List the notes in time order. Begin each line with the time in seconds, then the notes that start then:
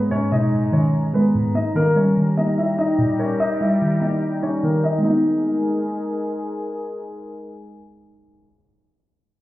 Already playing: G#2 D#3 G#3 A#3 B3 B4 A#5
0.11 G#2 C#4 C#5
0.32 B2 D#4 D#5
0.53 G#2
0.72 D#3 C#4 C#5
1.13 G#3 B3 B4
1.35 G#2
1.55 A#3 D#4 D#5
1.75 D#3 G3 A#3 G4 A#4
1.96 G3 C#4 C#5
2.17 D#3
2.37 A#3 D#4 D#5
2.58 E4 E5
2.78 D#4 D#5
2.99 A#2
3.19 C#4 A#4 C#5
3.40 D#4 D#5
3.61 G3 E4 E5
3.82 D#3
4.02 A#3 D#4 D#5
4.42 C#4 D#4 C#5
4.63 D#3 A#3 A#4
4.84 D#4 D#5
4.98 G#3
5.02 G#3 A#3 B3 D#4 G#4 A#4
5.10 D#4